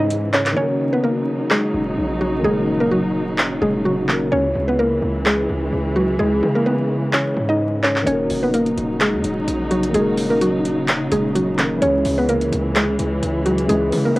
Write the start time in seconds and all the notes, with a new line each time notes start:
Already playing: G#2 C#3 E3 G#3
0.00 D#4 D#5
0.10 closed hi-hat
0.33 C#4 C#5, clap, closed hi-hat
0.46 clap, closed hi-hat
0.52 D#3 A#3
0.57 F#3 C#4 D#4 F#4 C#5
0.62 A#4
0.93 B3 B4
1.04 A#3 A#4
1.51 G#3 G#4, clap
1.74 D#1
1.97 A#1
2.21 F#3 F#4
2.39 D#3 A#3
2.44 D#1 G#3 C#4 F#4 G#4
2.50 A#4
2.80 A#3 A#4
2.91 F#3 F#4
3.38 clap
3.62 D#1 G#3 G#4
3.85 F#3 F#4
4.06 D#3 A#3 C#4 F#4, clap
4.12 A#4
4.32 C#2 E3 G#3 C#4 C#5
4.55 C#2
4.68 B3 B4
4.79 A#3 A#4
5.02 C#2
5.26 G#3 G#4, clap
5.49 C#2
5.73 C#2
5.96 F#3 F#4
6.19 C#2 G#3 G#4
6.43 C#3
6.55 A#3 A#4
6.66 B3 B4
7.13 C#4 C#5, clap
7.37 G#2
7.49 D#4 D#5
7.83 C#4 C#5, clap
7.96 clap
8.02 D#3 A#3
8.07 D#1 C#3 F#3 C#4 D#4 F#4 C#5, closed hi-hat
8.12 A#4
8.30 D#1, open hi-hat
8.43 B3 B4
8.54 A#3 A#4, closed hi-hat
8.66 closed hi-hat
8.77 D#1, closed hi-hat
9.01 G#3 G#4, clap, closed hi-hat
9.13 D#2
9.24 D#1, closed hi-hat
9.47 A#1, closed hi-hat
9.71 F#3 F#4, closed hi-hat
9.83 closed hi-hat
9.89 D#3 A#3
9.94 D#1 G#3 C#4 F#4 G#4, closed hi-hat
10.00 A#4
10.17 open hi-hat
10.30 A#3 A#4
10.41 F#3 F#4, closed hi-hat
10.65 closed hi-hat
10.88 clap, closed hi-hat
11.12 D#1 G#3 G#4, closed hi-hat
11.35 F#3 F#4, closed hi-hat
11.56 D#3 A#3 C#4 F#4, clap, closed hi-hat
11.61 A#4
11.77 E3 G#3
11.82 C#2 E3 G#3 C#4 G#4 C#5, closed hi-hat
11.87 C#5
12.05 C#2, open hi-hat
12.18 B3 B4
12.29 A#3 A#4, closed hi-hat
12.41 closed hi-hat
12.52 C#2, closed hi-hat
12.76 G#3 G#4, clap, closed hi-hat
12.99 C#2, closed hi-hat
13.22 C#2, closed hi-hat
13.46 F#3 F#4, closed hi-hat
13.58 closed hi-hat
13.64 E3 G#3
13.69 C#2 G#3 C#4 G#4, closed hi-hat
13.75 B4
13.92 C#3, open hi-hat
14.05 A#3 A#4
14.16 B4, closed hi-hat